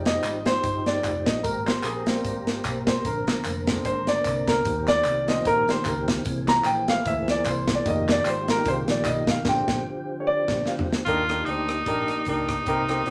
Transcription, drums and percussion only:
0.05 snare loud
0.05 clap medium
0.05 closed hi-hat medium
0.05 tambourine soft
0.23 clap loud
0.23 closed hi-hat medium
0.23 tambourine medium
0.46 snare loud
0.46 closed hi-hat medium
0.46 tambourine medium
0.63 kick loud
0.63 closed hi-hat medium
0.63 tambourine medium
0.86 snare medium
0.86 closed hi-hat medium
0.86 tambourine soft
1.03 kick medium
1.03 clap medium
1.03 closed hi-hat medium
1.03 tambourine medium
1.26 kick loud
1.26 snare loud
1.26 closed hi-hat medium
1.26 tambourine soft
1.44 kick loud
1.44 closed hi-hat medium
1.44 tambourine medium
1.67 snare loud
1.67 clap medium
1.67 closed hi-hat medium
1.67 tambourine medium
1.83 clap loud
1.83 closed hi-hat medium
1.83 tambourine medium
2.06 snare loud
2.06 closed hi-hat medium
2.06 tambourine medium
2.24 kick loud
2.24 closed hi-hat medium
2.24 tambourine medium
2.47 snare medium
2.47 closed hi-hat medium
2.47 tambourine medium
2.64 kick medium
2.64 clap medium
2.64 closed hi-hat medium
2.64 tambourine medium
2.87 kick loud
2.87 snare loud
2.87 closed hi-hat medium
2.87 tambourine soft
3.05 kick loud
3.05 closed hi-hat medium
3.05 tambourine medium
3.27 snare loud
3.27 clap medium
3.27 closed hi-hat medium
3.27 tambourine medium
3.44 clap medium
3.44 closed hi-hat medium
3.44 tambourine medium
3.67 kick medium
3.67 snare loud
3.67 closed hi-hat medium
3.67 tambourine medium
3.85 kick loud
3.85 closed hi-hat medium
3.85 tambourine medium
4.07 snare medium
4.07 closed hi-hat medium
4.07 tambourine soft
4.24 kick medium
4.24 clap medium
4.24 closed hi-hat medium
4.24 tambourine medium
4.48 kick loud
4.48 snare loud
4.48 closed hi-hat medium
4.48 tambourine medium
4.65 kick loud
4.65 closed hi-hat medium
4.65 tambourine medium
4.87 snare loud
4.87 clap medium
4.87 closed hi-hat medium
4.87 tambourine medium
5.04 clap loud
5.04 closed hi-hat medium
5.04 tambourine medium
5.28 snare loud
5.28 closed hi-hat medium
5.28 tambourine medium
5.45 kick loud
5.45 closed hi-hat medium
5.45 tambourine medium
5.68 snare medium
5.68 closed hi-hat medium
5.68 tambourine soft
5.85 kick medium
5.85 clap medium
5.85 closed hi-hat medium
5.85 tambourine medium
6.08 kick medium
6.08 snare loud
6.08 closed hi-hat medium
6.08 tambourine medium
6.25 kick loud
6.25 closed hi-hat medium
6.25 tambourine medium
6.47 snare loud
6.47 clap medium
6.47 closed hi-hat medium
6.47 tambourine soft
6.64 clap medium
6.64 closed hi-hat medium
6.64 tambourine loud
6.88 snare loud
6.88 closed hi-hat medium
6.88 tambourine medium
7.05 kick loud
7.05 closed hi-hat medium
7.05 tambourine medium
7.28 snare medium
7.28 closed hi-hat medium
7.28 tambourine soft
7.44 kick medium
7.44 clap medium
7.44 closed hi-hat medium
7.44 tambourine medium
7.68 kick loud
7.68 snare loud
7.68 closed hi-hat medium
7.68 tambourine soft
7.86 kick loud
7.86 closed hi-hat medium
7.86 tambourine medium
8.08 snare loud
8.08 clap medium
8.08 closed hi-hat medium
8.08 tambourine soft
8.25 clap loud
8.25 closed hi-hat medium
8.25 tambourine loud
8.48 snare loud
8.48 closed hi-hat medium
8.48 tambourine medium
8.65 kick loud
8.65 closed hi-hat medium
8.65 tambourine medium
8.88 snare loud
8.88 closed hi-hat medium
8.88 tambourine medium
9.04 kick medium
9.04 clap medium
9.04 closed hi-hat medium
9.04 tambourine medium
9.27 kick loud
9.27 snare loud
9.27 closed hi-hat medium
9.27 tambourine medium
9.45 kick loud
9.45 snare loud
9.45 crash medium
9.68 kick loud
9.68 snare loud
10.48 kick loud
10.48 snare medium
10.48 crash medium
10.66 snare medium
10.79 floor tom medium
10.93 snare loud
11.06 kick medium
11.06 closed hi-hat medium
11.29 cross-stick loud
11.29 closed hi-hat medium
11.46 closed hi-hat medium
11.68 cross-stick loud
11.68 closed hi-hat medium
11.86 kick loud
11.86 closed hi-hat medium
12.08 cross-stick medium
12.08 closed hi-hat medium
12.25 kick medium
12.25 closed hi-hat medium
12.49 kick medium
12.49 cross-stick loud
12.49 closed hi-hat medium
12.66 kick medium
12.66 closed hi-hat medium
12.88 cross-stick loud
12.88 closed hi-hat medium
13.06 closed hi-hat medium

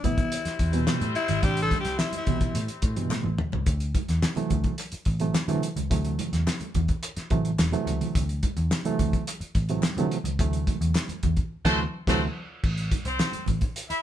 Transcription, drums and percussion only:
0.04 kick medium
0.04 closed hi-hat medium
0.04 muted conga soft
0.04 low conga medium
0.18 kick loud
0.18 closed hi-hat medium
0.32 closed hi-hat loud
0.45 snare soft
0.45 closed hi-hat medium
0.59 kick medium
0.59 closed hi-hat medium
0.73 closed hi-hat medium
0.87 snare loud
0.87 clap loud
0.87 high conga medium
1.01 closed hi-hat medium
1.01 high conga medium
1.15 closed hi-hat medium
1.15 muted conga soft
1.28 closed hi-hat medium
1.28 low conga medium
1.43 kick loud
1.43 closed hi-hat medium
1.57 closed hi-hat medium
1.71 kick medium
1.71 closed hi-hat medium
1.71 muted conga soft
1.71 high conga medium
1.85 snare soft
1.85 closed hi-hat medium
1.99 snare loud
1.99 clap loud
2.13 closed hi-hat medium
2.13 high conga medium
2.27 kick medium
2.27 closed hi-hat medium
2.27 muted conga soft
2.27 low conga medium
2.41 kick medium
2.41 closed hi-hat medium
2.55 closed hi-hat medium
2.68 closed hi-hat medium
2.82 kick loud
2.82 closed hi-hat medium
2.82 muted conga soft
2.96 closed hi-hat medium
3.10 snare medium
3.10 clap loud
3.10 high conga medium
3.24 high conga medium
3.38 mid tom loud
3.52 floor tom loud
3.52 low conga medium
3.66 kick loud
3.66 closed hi-hat loud
3.66 muted conga soft
3.80 closed hi-hat medium
3.95 kick medium
3.95 closed hi-hat medium
3.95 muted conga soft
3.95 high conga medium
4.08 snare soft
4.08 closed hi-hat medium
4.23 snare loud
4.23 clap loud
4.36 closed hi-hat medium
4.36 high conga medium
4.50 kick medium
4.50 closed hi-hat medium
4.50 low conga medium
4.64 kick medium
4.64 closed hi-hat soft
4.78 clap medium
4.78 closed hi-hat medium
4.78 muted conga soft
4.92 closed hi-hat medium
5.05 kick medium
5.05 closed hi-hat medium
5.20 closed hi-hat medium
5.34 snare loud
5.34 clap loud
5.34 high conga medium
5.48 closed hi-hat medium
5.48 high conga medium
5.62 closed hi-hat medium
5.62 muted conga soft
5.77 closed hi-hat medium
5.77 low conga medium
5.91 kick loud
5.91 closed hi-hat medium
6.05 closed hi-hat medium
6.19 closed hi-hat medium
6.19 muted conga soft
6.19 high conga medium
6.33 snare soft
6.33 closed hi-hat medium
6.47 snare loud
6.47 clap loud
6.60 closed hi-hat soft
6.60 high conga medium
6.75 kick medium
6.75 closed hi-hat medium
6.75 muted conga soft
6.75 low conga medium
6.88 kick medium
6.88 closed hi-hat medium
7.03 clap medium
7.03 closed hi-hat loud
7.17 snare soft
7.17 closed hi-hat medium
7.30 kick loud
7.30 closed hi-hat medium
7.30 muted conga soft
7.45 closed hi-hat medium
7.59 snare loud
7.59 clap loud
7.59 muted conga soft
7.59 high conga medium
7.72 closed hi-hat medium
7.72 high conga medium
7.87 closed hi-hat medium
7.87 muted conga soft
8.01 closed hi-hat medium
8.01 low conga medium
8.15 kick loud
8.15 closed hi-hat loud
8.15 muted conga soft
8.29 closed hi-hat medium
8.43 kick medium
8.43 closed hi-hat medium
8.43 muted conga soft
8.43 high conga medium
8.57 closed hi-hat medium
8.71 snare loud
8.71 clap loud
8.71 muted conga soft
8.85 closed hi-hat medium
8.85 high conga medium
8.99 kick medium
8.99 closed hi-hat medium
8.99 muted conga soft
8.99 low conga medium
9.13 kick medium
9.13 closed hi-hat soft
9.27 clap medium
9.27 closed hi-hat loud
9.27 muted conga soft
9.41 closed hi-hat medium
9.55 kick loud
9.55 closed hi-hat medium
9.55 muted conga soft
9.69 closed hi-hat medium
9.83 snare loud
9.83 clap loud
9.83 muted conga soft
9.83 high conga medium
9.97 closed hi-hat medium
9.97 high conga medium
10.11 closed hi-hat medium
10.25 closed hi-hat medium
10.25 low conga medium
10.39 kick loud
10.39 closed hi-hat medium
10.53 closed hi-hat medium
10.67 kick medium
10.67 closed hi-hat medium
10.67 high conga medium
10.82 closed hi-hat medium
10.95 snare loud
10.95 clap loud
10.95 muted conga soft
11.09 closed hi-hat soft
11.09 high conga medium
11.23 kick medium
11.23 closed hi-hat medium
11.23 muted conga soft
11.23 low conga medium
11.37 kick medium
11.37 closed hi-hat soft
11.65 kick loud
11.65 snare loud
11.65 crash medium
12.07 kick loud
12.07 snare loud
12.07 crash medium
12.64 kick loud
12.64 crash loud
12.64 muted conga soft
12.78 closed hi-hat medium
12.91 kick medium
12.91 closed hi-hat medium
12.91 high conga medium
13.05 closed hi-hat medium
13.19 snare loud
13.19 clap loud
13.19 muted conga soft
13.32 closed hi-hat soft
13.32 high conga medium
13.46 kick medium
13.46 closed hi-hat medium
13.46 low conga medium
13.61 kick medium
13.61 closed hi-hat soft
13.76 closed hi-hat loud
13.90 closed hi-hat medium

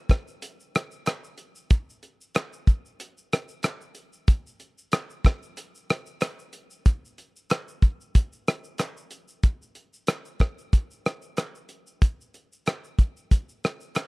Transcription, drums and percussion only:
0.09 kick medium
0.09 cross-stick medium
0.09 closed hi-hat soft
0.09 shaker soft
0.28 shaker soft
0.42 closed hi-hat medium
0.42 shaker medium
0.60 shaker medium
0.75 cross-stick loud
0.75 closed hi-hat soft
0.75 shaker soft
0.91 shaker medium
1.06 cross-stick medium
1.06 clap medium
1.06 closed hi-hat medium
1.06 shaker medium
1.24 shaker medium
1.38 closed hi-hat medium
1.38 shaker medium
1.55 shaker medium
1.70 kick loud
1.70 closed hi-hat medium
1.70 shaker medium
1.90 shaker medium
2.03 closed hi-hat soft
2.03 shaker soft
2.21 shaker medium
2.35 cross-stick loud
2.35 clap medium
2.35 closed hi-hat medium
2.35 shaker medium
2.53 shaker medium
2.67 kick medium
2.67 closed hi-hat soft
2.67 shaker soft
2.86 shaker soft
3.00 closed hi-hat medium
3.00 shaker medium
3.18 shaker medium
3.33 cross-stick medium
3.33 closed hi-hat medium
3.33 shaker medium
3.48 shaker medium
3.63 cross-stick medium
3.63 clap medium
3.63 closed hi-hat medium
3.63 shaker medium
3.81 shaker medium
3.95 closed hi-hat medium
3.95 shaker medium
4.13 shaker medium
4.28 kick loud
4.28 closed hi-hat medium
4.28 shaker medium
4.47 shaker medium
4.60 closed hi-hat soft
4.60 shaker soft
4.78 shaker medium
4.92 cross-stick loud
4.92 clap medium
4.92 closed hi-hat medium
4.92 shaker medium
5.10 shaker medium
5.24 kick medium
5.24 cross-stick medium
5.24 closed hi-hat soft
5.24 shaker soft
5.43 shaker medium
5.57 closed hi-hat medium
5.57 shaker medium
5.75 shaker medium
5.90 cross-stick loud
5.90 closed hi-hat soft
5.90 shaker soft
6.06 shaker medium
6.21 cross-stick medium
6.21 clap medium
6.21 closed hi-hat medium
6.21 shaker medium
6.39 shaker medium
6.53 closed hi-hat medium
6.53 shaker medium
6.70 shaker medium
6.86 kick loud
6.86 closed hi-hat medium
6.86 shaker medium
7.05 shaker medium
7.18 closed hi-hat soft
7.18 shaker soft
7.36 shaker medium
7.50 cross-stick loud
7.50 clap medium
7.50 closed hi-hat medium
7.50 shaker medium
7.68 shaker medium
7.82 kick medium
7.82 closed hi-hat soft
7.82 shaker soft
8.01 shaker soft
8.15 kick loud
8.15 closed hi-hat medium
8.15 shaker medium
8.33 shaker medium
8.48 cross-stick loud
8.48 closed hi-hat medium
8.48 shaker medium
8.64 shaker medium
8.78 cross-stick medium
8.78 clap medium
8.78 closed hi-hat medium
8.78 shaker medium
8.97 shaker medium
9.11 closed hi-hat medium
9.11 shaker medium
9.28 shaker medium
9.43 kick loud
9.43 closed hi-hat medium
9.43 shaker medium
9.62 shaker medium
9.75 closed hi-hat soft
9.75 shaker soft
9.93 shaker medium
10.07 cross-stick loud
10.07 clap medium
10.07 closed hi-hat medium
10.07 shaker medium
10.25 shaker medium
10.40 kick medium
10.40 cross-stick medium
10.40 closed hi-hat soft
10.40 shaker soft
10.58 shaker soft
10.73 kick medium
10.73 closed hi-hat medium
10.73 shaker medium
10.91 shaker medium
11.06 cross-stick medium
11.06 closed hi-hat soft
11.06 shaker soft
11.22 shaker soft
11.37 cross-stick medium
11.37 clap medium
11.37 closed hi-hat medium
11.37 shaker medium
11.55 shaker soft
11.69 closed hi-hat soft
11.69 shaker medium
11.87 shaker medium
12.02 kick loud
12.02 closed hi-hat medium
12.02 shaker medium
12.21 shaker medium
12.34 closed hi-hat soft
12.34 shaker soft
12.52 shaker medium
12.66 cross-stick medium
12.66 clap medium
12.66 closed hi-hat medium
12.66 shaker medium
12.84 shaker medium
12.99 kick medium
12.99 closed hi-hat soft
12.99 shaker soft
13.17 shaker soft
13.31 kick medium
13.31 closed hi-hat medium
13.31 shaker medium
13.49 shaker medium
13.64 cross-stick loud
13.64 closed hi-hat soft
13.64 shaker soft
13.80 shaker medium
13.95 cross-stick medium
13.95 clap medium
13.95 closed hi-hat medium
13.95 shaker medium

